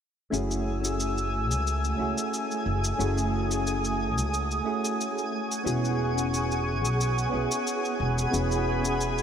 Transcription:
0.30 F#1 A3 C#4 E4 F#4 G#4 G#5 E6, shaker
0.51 shaker
0.80 A3 C#4 E4
0.84 F#4 G#4, shaker
1.00 shaker
1.18 shaker
1.50 C#2, shaker
1.67 shaker
1.84 shaker
1.96 C#2 A3 C#4 E4
2.00 F#4 G#4
2.18 shaker
2.34 shaker
2.51 shaker
2.66 F#1
2.84 shaker
2.98 F#1 A3 C#4 E4 F#4 G#4 D#6, shaker
3.18 shaker
3.47 A3 C#4 E4
3.51 F#4 G#4, shaker
3.67 shaker
3.84 shaker
4.17 C#2, shaker
4.34 shaker
4.51 shaker
4.64 A3 C#4 E4 F#4 G#4
4.85 shaker
5.01 shaker
5.18 shaker
5.33 G#4 F#5 C#6
5.51 shaker
5.64 E1 B3 C#4 E4 F#4 G#4, shaker
5.85 shaker
6.14 B3 C#4 E4
6.18 F#4 G#4, shaker
6.34 shaker
6.51 shaker
6.84 B1, shaker
7.01 shaker
7.18 shaker
7.29 B3 C#4 E4
7.34 B1 F#4 G#4
7.51 shaker
7.67 shaker
7.85 shaker
8.00 E1 B5
8.18 shaker
8.31 E1 B3 C#4 E4 F#4 G#4, shaker
8.51 shaker
8.80 B3 C#4 E4
8.85 F#4 G#4, shaker
9.01 shaker
9.18 shaker

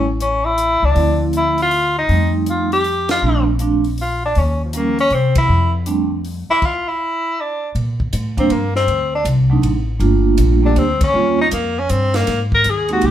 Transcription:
Already playing: A1
0.20 C#4, closed hi-hat
0.45 E4
0.58 closed hi-hat
0.82 C#2 D4
0.95 D2 F3 A3 C4 E4, open hi-hat
1.33 E4, closed hi-hat
1.58 open hi-hat
1.62 F4
1.71 open hi-hat
1.98 D#4
2.08 F2 G3 A3 C4 D#4, open hi-hat
2.46 F4, closed hi-hat
2.72 G4, open hi-hat
2.84 open hi-hat
3.09 F4, snare, ride
3.22 A#1 F3 A3 C4 D4
3.59 F3 A3 C4 D4, closed hi-hat
3.84 open hi-hat
3.98 F4, open hi-hat
4.26 D4
4.35 D#2 C#4, open hi-hat
4.64 F3
4.73 F3 G3 A#3 C#4, closed hi-hat
4.99 C#4, open hi-hat
5.10 C3 C4, open hi-hat
5.35 E4, kick, ride
5.49 F2
5.86 G3 A3 C4 D4, closed hi-hat
6.25 open hi-hat
6.49 E4, muted upright bass stroke
6.62 F4, kick, crash
6.88 E4
7.41 D4
7.75 A#2, ride
8.00 kick
8.13 A2, hi-hat pedal, ride
8.37 F3 G3 A#3 C4 D4, kick, ride
8.50 G2 A#3, ride
8.76 C4, snare
8.87 D2, ride
9.15 D4
9.25 C2, hi-hat pedal, ride
9.50 F#3 A3 C4 D4 D#4
9.62 A1, ride
9.99 G1 G3 A3 A#3 D4 F4, ride
10.38 A#1, hi-hat pedal, ride
10.62 G3 A3 A#3 D4 G4
10.76 D2 C4, ride
11.01 C#4, kick, ride
11.13 D#2 G3 A#3 C4 C#4 F4
11.41 D#4
11.51 F2 A#3, hi-hat pedal, ride
11.79 C#4
11.89 G2 C4, hi-hat pedal, ride
12.14 A#3, snare, ride
12.27 G#2, snare, ride
12.52 A#4, kick
12.64 D#2, hi-hat pedal, ride
12.70 G#4
12.89 G#3 A#3 C4 D#4 F#4 G4, ride
13.01 C2, ride
13.06 G4

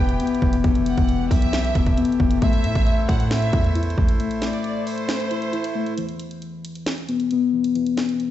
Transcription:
Already playing: E1 E3 B3 G4 G5
0.09 closed hi-hat
0.20 B3, closed hi-hat
0.27 closed hi-hat
0.35 closed hi-hat
0.42 E1 E3, kick
0.53 closed hi-hat
0.64 E1 E3 A3, kick, closed hi-hat
0.75 closed hi-hat
0.86 F#5, closed hi-hat
0.98 E1, kick, closed hi-hat
1.09 closed hi-hat
1.31 B1 E5, kick, open hi-hat
1.42 closed hi-hat
1.53 snare, closed hi-hat
1.65 closed hi-hat
1.75 E1 B3, kick, closed hi-hat
1.86 kick, closed hi-hat
1.98 B3, closed hi-hat
2.05 closed hi-hat
2.12 closed hi-hat
2.20 E1 E3, kick
2.31 closed hi-hat
2.42 A1 A3 E4 C5 E5, kick, closed hi-hat
2.53 closed hi-hat
2.64 A2, closed hi-hat
2.75 A1, kick, closed hi-hat
2.86 closed hi-hat
3.09 A2 F#5, kick, closed hi-hat
3.20 closed hi-hat
3.31 E5, snare, closed hi-hat
3.42 closed hi-hat
3.53 E2 E4, kick, closed hi-hat
3.64 closed hi-hat
3.75 E4, closed hi-hat
3.83 closed hi-hat
3.90 closed hi-hat
3.98 A1 A3, kick
4.08 closed hi-hat
4.20 A3, closed hi-hat
4.31 closed hi-hat
4.42 D5, snare, closed hi-hat
4.53 closed hi-hat
4.64 closed hi-hat
4.86 C5, open hi-hat
4.98 closed hi-hat
5.09 snare, closed hi-hat
5.20 closed hi-hat
5.31 E4, closed hi-hat
5.42 closed hi-hat
5.53 E4, closed hi-hat
5.64 closed hi-hat
5.75 A3
5.86 closed hi-hat
5.98 E3, closed hi-hat
6.09 closed hi-hat
6.20 closed hi-hat
6.31 closed hi-hat
6.42 closed hi-hat
6.65 closed hi-hat
6.75 closed hi-hat
6.86 snare, closed hi-hat
6.98 closed hi-hat
7.09 B3, closed hi-hat
7.20 closed hi-hat
7.31 B3, closed hi-hat
7.53 E3
7.64 closed hi-hat
7.75 E3, closed hi-hat
7.86 closed hi-hat
7.97 snare, closed hi-hat
8.09 closed hi-hat
8.20 closed hi-hat

